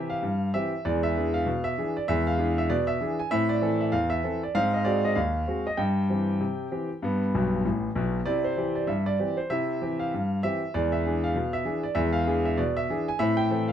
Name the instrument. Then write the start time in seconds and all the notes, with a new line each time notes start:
grand piano
Already playing: C3 E3 C4 G4 E5
0.10 F5
0.23 G2
0.54 E3 C4 G4 E5
0.85 E2 G#3 D5
1.03 E5
1.16 E3 D4 G#4
1.34 F5
1.46 B2
1.64 E5
1.78 E3 D4 G#4
1.97 D5
2.08 E2 G#3 E5
2.27 F5
2.39 E3 D4 G#4
2.58 E5
2.70 B2 D5
2.87 E5
3.01 E3 D4 G#4
3.19 G#5
3.31 A2 C4 E5
3.49 D5
3.61 E3 C4 A4
3.81 E5
3.92 E2 F5
4.10 E5
4.24 E3 C4 A4
4.43 D5
4.55 G#2 C4 F5
4.74 D#5
4.85 G#3 C4 F#4 D5
5.05 D#5
5.15 D#2 F5
5.48 G#3 C4 F#4
5.67 D#5
5.77 G2 G5
6.09 E3 C4 G4
6.41 C3
6.71 E3 C4 G4
7.03 G2 B3
7.34 B1 B2
7.65 A1 A2
7.95 B1 B2
8.26 C3 E4 D5
8.44 C5
8.57 E3 C4 G4
8.75 D5
8.87 G2 E5
9.06 D5
9.19 E3 C4 G4
9.37 C5
9.50 C3 E4 E5
9.81 E3 C4 G4
10.00 F5
10.14 G2
10.43 E3 C4 G4 E5
10.74 E2 G#3 D5
10.92 E5
11.06 E3 D4 G#4
11.24 F5
11.35 B2
11.53 E5
11.65 E3 D4 G#4
11.83 D5
11.95 E2 G#3 E5
12.13 F5
12.27 E3 D4 G#4
12.45 E5
12.57 B2 D5
12.77 E5
12.89 E3 D4 G#4
13.08 G#5
13.19 A2 C4 E5
13.37 G5
13.50 E3 C4 A4
13.68 F5